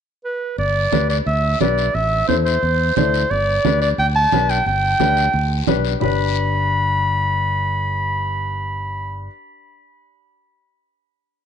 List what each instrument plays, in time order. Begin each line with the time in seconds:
0.25 clarinet B4
0.58 fingered electric bass G1, clarinet D5, high conga, long guiro
0.92 fingered electric bass D2, upright piano D4 G4 B4, high conga, short guiro
1.10 clarinet D5, short guiro
1.26 fingered electric bass D2, clarinet E5, high conga, long guiro
1.60 fingered electric bass B1, upright piano D4 G4 B4, clarinet D5, high conga, short guiro
1.78 short guiro
1.94 fingered electric bass A1, clarinet E5, high conga, long guiro
2.28 fingered electric bass E2, upright piano E4 A4 C5, clarinet C5, high conga, short guiro
2.45 clarinet C5, short guiro
2.62 fingered electric bass E2, high conga, long guiro
2.96 fingered electric bass D2, upright piano E4 A4 D5, clarinet C5, high conga, low conga, short guiro
3.14 short guiro
3.30 fingered electric bass G1, clarinet D5, high conga, long guiro
3.65 fingered electric bass D2, upright piano D4 G4 B4, high conga, short guiro
3.81 clarinet D5, short guiro
3.98 fingered electric bass D2, clarinet G5, high conga, long guiro
4.16 clarinet A5
4.32 fingered electric bass B1, upright piano D4 G4 B4, high conga, short guiro
4.49 clarinet G5, short guiro
4.66 fingered electric bass G1, clarinet G5, high conga, long guiro
5.00 fingered electric bass D2, upright piano D4 G4 B4, high conga, short guiro
5.17 short guiro
5.33 fingered electric bass D2, high conga, long guiro
5.67 fingered electric bass B1, upright piano D4 G4 B4, high conga, low conga, short guiro
5.85 short guiro
6.00 fingered electric bass G1, upright piano D4 G4 B4, clarinet B5, low conga, long guiro